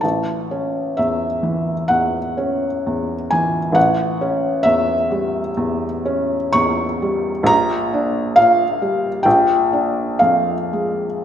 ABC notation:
X:1
M:4/4
L:1/8
Q:1/4=65
K:A
V:1 name="Felt piano"
a2 e2 f3 g | f2 e4 c'2 | [K:Bblyd] b2 f2 g2 f2 |]
V:2 name="Felt piano" clef=bass
A,,, C E,, E, E,, C E,, E, | A,,, C E,, =G, E,, C E,, G, | [K:Bblyd] B,,, D B,, G, B,,, D F,, _A, |]